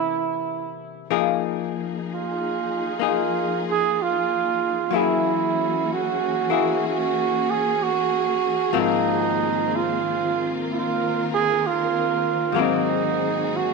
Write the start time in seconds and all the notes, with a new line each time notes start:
Already playing: C3 E3 A#3 C#4 E4
1.09 F3 A#3 D#4 G#4
2.14 F4
3.00 A#3 D#4 F4 G#4
3.08 F4
3.71 G#4
4.02 F4
4.91 E3 F#3 A#3 C#4 E4 F#4 G#4
4.96 E4 G#4
5.93 F#4
6.50 A#3 E4 G#4
6.88 F#4
7.50 G#4
7.83 F#4
8.72 G#2 D#3 F3 A#3 C4 F4
8.80 D#4
9.76 F4
10.63 A#4
10.72 F4
11.34 G#4
11.66 F4
12.52 G#2 F#3 A#3 F#4 G#4
12.58 C4 D#4
13.56 F#4